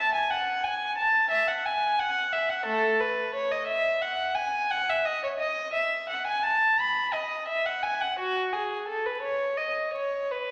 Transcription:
0, 0, Header, 1, 2, 480
1, 0, Start_track
1, 0, Key_signature, 4, "major"
1, 0, Tempo, 677966
1, 1885, Time_signature, 4, 2, 24, 8
1, 3819, Tempo, 697674
1, 6699, Tempo, 724638
1, 7317, End_track
2, 0, Start_track
2, 0, Title_t, "Violin"
2, 0, Program_c, 0, 40
2, 0, Note_on_c, 0, 81, 81
2, 96, Note_off_c, 0, 81, 0
2, 101, Note_on_c, 0, 80, 61
2, 215, Note_off_c, 0, 80, 0
2, 218, Note_on_c, 0, 78, 71
2, 450, Note_on_c, 0, 80, 70
2, 451, Note_off_c, 0, 78, 0
2, 684, Note_off_c, 0, 80, 0
2, 691, Note_on_c, 0, 81, 74
2, 921, Note_off_c, 0, 81, 0
2, 925, Note_on_c, 0, 76, 82
2, 1041, Note_off_c, 0, 76, 0
2, 1047, Note_on_c, 0, 78, 64
2, 1165, Note_off_c, 0, 78, 0
2, 1170, Note_on_c, 0, 80, 65
2, 1406, Note_off_c, 0, 80, 0
2, 1412, Note_on_c, 0, 78, 76
2, 1647, Note_off_c, 0, 78, 0
2, 1647, Note_on_c, 0, 76, 70
2, 1766, Note_off_c, 0, 76, 0
2, 1767, Note_on_c, 0, 78, 67
2, 1881, Note_on_c, 0, 57, 59
2, 1881, Note_on_c, 0, 69, 74
2, 1887, Note_off_c, 0, 78, 0
2, 2110, Note_off_c, 0, 57, 0
2, 2122, Note_off_c, 0, 69, 0
2, 2124, Note_on_c, 0, 71, 67
2, 2370, Note_off_c, 0, 71, 0
2, 2370, Note_on_c, 0, 73, 73
2, 2488, Note_on_c, 0, 75, 66
2, 2489, Note_off_c, 0, 73, 0
2, 2597, Note_on_c, 0, 76, 78
2, 2611, Note_off_c, 0, 75, 0
2, 2842, Note_off_c, 0, 76, 0
2, 2846, Note_on_c, 0, 78, 72
2, 3079, Note_on_c, 0, 80, 71
2, 3093, Note_off_c, 0, 78, 0
2, 3330, Note_off_c, 0, 80, 0
2, 3332, Note_on_c, 0, 78, 80
2, 3456, Note_off_c, 0, 78, 0
2, 3467, Note_on_c, 0, 76, 71
2, 3577, Note_on_c, 0, 75, 68
2, 3582, Note_off_c, 0, 76, 0
2, 3697, Note_off_c, 0, 75, 0
2, 3707, Note_on_c, 0, 73, 64
2, 3753, Note_off_c, 0, 73, 0
2, 3817, Note_on_c, 0, 75, 76
2, 4048, Note_off_c, 0, 75, 0
2, 4051, Note_on_c, 0, 76, 69
2, 4289, Note_off_c, 0, 76, 0
2, 4299, Note_on_c, 0, 78, 66
2, 4417, Note_off_c, 0, 78, 0
2, 4420, Note_on_c, 0, 80, 65
2, 4534, Note_on_c, 0, 81, 74
2, 4539, Note_off_c, 0, 80, 0
2, 4781, Note_off_c, 0, 81, 0
2, 4785, Note_on_c, 0, 83, 77
2, 5015, Note_on_c, 0, 75, 64
2, 5024, Note_off_c, 0, 83, 0
2, 5254, Note_on_c, 0, 76, 73
2, 5258, Note_off_c, 0, 75, 0
2, 5375, Note_off_c, 0, 76, 0
2, 5377, Note_on_c, 0, 78, 61
2, 5494, Note_on_c, 0, 80, 64
2, 5498, Note_off_c, 0, 78, 0
2, 5617, Note_off_c, 0, 80, 0
2, 5619, Note_on_c, 0, 78, 61
2, 5739, Note_off_c, 0, 78, 0
2, 5741, Note_on_c, 0, 66, 69
2, 5974, Note_off_c, 0, 66, 0
2, 5977, Note_on_c, 0, 68, 56
2, 6215, Note_on_c, 0, 69, 58
2, 6217, Note_off_c, 0, 68, 0
2, 6334, Note_off_c, 0, 69, 0
2, 6338, Note_on_c, 0, 71, 52
2, 6450, Note_on_c, 0, 73, 64
2, 6457, Note_off_c, 0, 71, 0
2, 6690, Note_off_c, 0, 73, 0
2, 6694, Note_on_c, 0, 75, 59
2, 6933, Note_off_c, 0, 75, 0
2, 6933, Note_on_c, 0, 73, 53
2, 7170, Note_off_c, 0, 73, 0
2, 7183, Note_on_c, 0, 71, 59
2, 7317, Note_off_c, 0, 71, 0
2, 7317, End_track
0, 0, End_of_file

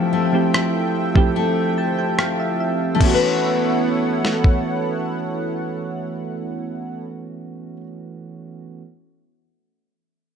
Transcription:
0, 0, Header, 1, 6, 480
1, 0, Start_track
1, 0, Key_signature, 3, "major"
1, 0, Tempo, 821918
1, 1755, Time_signature, 4, 2, 24, 8
1, 6047, End_track
2, 0, Start_track
2, 0, Title_t, "Analog synth pad"
2, 0, Program_c, 0, 89
2, 0, Note_on_c, 0, 53, 66
2, 0, Note_on_c, 0, 60, 74
2, 0, Note_on_c, 0, 69, 72
2, 0, Note_on_c, 0, 76, 67
2, 0, Note_on_c, 0, 79, 87
2, 1736, Note_off_c, 0, 53, 0
2, 1736, Note_off_c, 0, 60, 0
2, 1736, Note_off_c, 0, 69, 0
2, 1736, Note_off_c, 0, 76, 0
2, 1736, Note_off_c, 0, 79, 0
2, 1756, Note_on_c, 0, 59, 76
2, 1756, Note_on_c, 0, 64, 67
2, 1756, Note_on_c, 0, 69, 71
2, 1756, Note_on_c, 0, 78, 79
2, 1757, Note_on_c, 0, 73, 69
2, 4119, Note_off_c, 0, 59, 0
2, 4119, Note_off_c, 0, 64, 0
2, 4119, Note_off_c, 0, 69, 0
2, 4119, Note_off_c, 0, 78, 0
2, 4120, Note_off_c, 0, 73, 0
2, 6047, End_track
3, 0, Start_track
3, 0, Title_t, "Nylon-string guitar"
3, 0, Program_c, 1, 24
3, 0, Note_on_c, 1, 53, 81
3, 74, Note_on_c, 1, 57, 58
3, 315, Note_on_c, 1, 64, 56
3, 792, Note_off_c, 1, 57, 0
3, 794, Note_on_c, 1, 57, 66
3, 1275, Note_on_c, 1, 67, 64
3, 1718, Note_off_c, 1, 57, 0
3, 1720, Note_on_c, 1, 57, 76
3, 1755, Note_off_c, 1, 53, 0
3, 1763, Note_off_c, 1, 64, 0
3, 1766, Note_on_c, 1, 61, 74
3, 1800, Note_off_c, 1, 67, 0
3, 1803, Note_on_c, 1, 66, 88
3, 1836, Note_on_c, 1, 71, 80
3, 4534, Note_off_c, 1, 57, 0
3, 4556, Note_off_c, 1, 61, 0
3, 4575, Note_off_c, 1, 66, 0
3, 4592, Note_off_c, 1, 71, 0
3, 6047, End_track
4, 0, Start_track
4, 0, Title_t, "Synth keys"
4, 0, Program_c, 2, 88
4, 0, Control_c, 2, 64, 127
4, 0, Note_on_c, 2, 53, 84
4, 0, Note_on_c, 2, 57, 77
4, 0, Note_on_c, 2, 60, 75
4, 0, Note_on_c, 2, 64, 74
4, 0, Note_on_c, 2, 67, 95
4, 135, Note_off_c, 2, 53, 0
4, 137, Note_off_c, 2, 57, 0
4, 139, Note_off_c, 2, 60, 0
4, 141, Note_off_c, 2, 64, 0
4, 143, Note_off_c, 2, 67, 0
4, 190, Note_on_c, 2, 53, 81
4, 193, Note_on_c, 2, 57, 77
4, 198, Note_on_c, 2, 60, 78
4, 201, Note_on_c, 2, 64, 74
4, 205, Note_on_c, 2, 67, 87
4, 597, Note_off_c, 2, 53, 0
4, 599, Note_off_c, 2, 57, 0
4, 601, Note_off_c, 2, 60, 0
4, 603, Note_off_c, 2, 64, 0
4, 604, Note_off_c, 2, 67, 0
4, 669, Note_on_c, 2, 53, 90
4, 674, Note_on_c, 2, 57, 80
4, 677, Note_on_c, 2, 60, 80
4, 680, Note_on_c, 2, 64, 83
4, 684, Note_on_c, 2, 67, 99
4, 1039, Note_on_c, 2, 81, 63
4, 1148, Note_off_c, 2, 81, 0
4, 1159, Note_on_c, 2, 79, 65
4, 1268, Note_off_c, 2, 79, 0
4, 1278, Note_on_c, 2, 77, 66
4, 1388, Note_off_c, 2, 77, 0
4, 1399, Note_on_c, 2, 76, 62
4, 1481, Note_off_c, 2, 53, 0
4, 1484, Note_off_c, 2, 57, 0
4, 1485, Note_off_c, 2, 60, 0
4, 1487, Note_off_c, 2, 64, 0
4, 1489, Note_off_c, 2, 67, 0
4, 1509, Note_off_c, 2, 76, 0
4, 1520, Note_on_c, 2, 76, 67
4, 1729, Note_on_c, 2, 52, 73
4, 1741, Note_off_c, 2, 76, 0
4, 1744, Note_on_c, 2, 57, 68
4, 1758, Note_on_c, 2, 59, 67
4, 1763, Control_c, 2, 64, 0
4, 1773, Note_on_c, 2, 61, 69
4, 1788, Note_on_c, 2, 66, 81
4, 1865, Control_c, 2, 64, 127
4, 4515, Note_off_c, 2, 52, 0
4, 4522, Note_off_c, 2, 57, 0
4, 4529, Note_off_c, 2, 59, 0
4, 4536, Note_off_c, 2, 61, 0
4, 4544, Note_off_c, 2, 66, 0
4, 5142, Control_c, 2, 64, 0
4, 6047, End_track
5, 0, Start_track
5, 0, Title_t, "Downlifter"
5, 0, Program_c, 3, 103
5, 0, Note_on_c, 3, 60, 84
5, 1755, Note_off_c, 3, 60, 0
5, 6047, End_track
6, 0, Start_track
6, 0, Title_t, "Drums"
6, 318, Note_on_c, 9, 37, 116
6, 376, Note_off_c, 9, 37, 0
6, 675, Note_on_c, 9, 36, 85
6, 733, Note_off_c, 9, 36, 0
6, 1277, Note_on_c, 9, 37, 104
6, 1335, Note_off_c, 9, 37, 0
6, 1755, Note_on_c, 9, 36, 90
6, 1756, Note_on_c, 9, 49, 78
6, 1814, Note_off_c, 9, 36, 0
6, 1814, Note_off_c, 9, 49, 0
6, 2480, Note_on_c, 9, 38, 56
6, 2539, Note_off_c, 9, 38, 0
6, 2595, Note_on_c, 9, 36, 72
6, 2654, Note_off_c, 9, 36, 0
6, 6047, End_track
0, 0, End_of_file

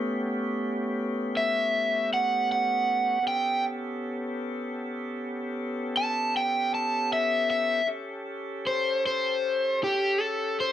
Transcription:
0, 0, Header, 1, 3, 480
1, 0, Start_track
1, 0, Tempo, 770218
1, 2020, Time_signature, 12, 3, 24, 8
1, 6683, End_track
2, 0, Start_track
2, 0, Title_t, "Overdriven electric guitar"
2, 0, Program_c, 0, 29
2, 854, Note_on_c, 0, 76, 67
2, 1303, Note_off_c, 0, 76, 0
2, 1331, Note_on_c, 0, 78, 69
2, 1548, Note_off_c, 0, 78, 0
2, 1570, Note_on_c, 0, 78, 61
2, 2021, Note_off_c, 0, 78, 0
2, 2042, Note_on_c, 0, 79, 89
2, 2264, Note_off_c, 0, 79, 0
2, 3722, Note_on_c, 0, 81, 92
2, 3945, Note_off_c, 0, 81, 0
2, 3968, Note_on_c, 0, 79, 65
2, 4188, Note_off_c, 0, 79, 0
2, 4204, Note_on_c, 0, 81, 62
2, 4425, Note_off_c, 0, 81, 0
2, 4443, Note_on_c, 0, 76, 78
2, 4665, Note_off_c, 0, 76, 0
2, 4676, Note_on_c, 0, 76, 81
2, 4902, Note_off_c, 0, 76, 0
2, 5401, Note_on_c, 0, 72, 62
2, 5625, Note_off_c, 0, 72, 0
2, 5648, Note_on_c, 0, 72, 81
2, 6101, Note_off_c, 0, 72, 0
2, 6130, Note_on_c, 0, 67, 75
2, 6361, Note_off_c, 0, 67, 0
2, 6361, Note_on_c, 0, 69, 76
2, 6585, Note_off_c, 0, 69, 0
2, 6608, Note_on_c, 0, 72, 65
2, 6683, Note_off_c, 0, 72, 0
2, 6683, End_track
3, 0, Start_track
3, 0, Title_t, "Tonewheel organ"
3, 0, Program_c, 1, 16
3, 0, Note_on_c, 1, 57, 59
3, 0, Note_on_c, 1, 59, 59
3, 0, Note_on_c, 1, 61, 57
3, 0, Note_on_c, 1, 67, 56
3, 1989, Note_off_c, 1, 59, 0
3, 1989, Note_off_c, 1, 67, 0
3, 1990, Note_off_c, 1, 57, 0
3, 1992, Note_off_c, 1, 61, 0
3, 2009, Note_on_c, 1, 59, 59
3, 2010, Note_on_c, 1, 61, 57
3, 2013, Note_on_c, 1, 69, 57
3, 2019, Note_on_c, 1, 67, 63
3, 4871, Note_off_c, 1, 59, 0
3, 4871, Note_off_c, 1, 61, 0
3, 4873, Note_off_c, 1, 69, 0
3, 4876, Note_off_c, 1, 67, 0
3, 4903, Note_on_c, 1, 61, 63
3, 4906, Note_on_c, 1, 69, 51
3, 4909, Note_on_c, 1, 67, 63
3, 6683, Note_off_c, 1, 61, 0
3, 6683, Note_off_c, 1, 67, 0
3, 6683, Note_off_c, 1, 69, 0
3, 6683, End_track
0, 0, End_of_file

